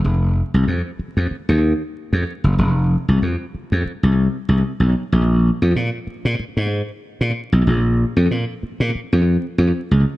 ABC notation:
X:1
M:4/4
L:1/16
Q:"Swing 16ths" 1/4=94
K:F
V:1 name="Slap bass" clef=bass
F,,,3 C,, F,, z2 F,, z _E,,2 z2 F,, z ^F,,, | F,,,3 C,, F,, z2 F,, z C,,2 z C,, z =B,,, z | B,,,3 F,, B,, z2 B,, z _A,,2 z2 B,, z =B,,, | B,,,3 F,, B,, z2 B,, z F,,2 z F,, z _D,, z |]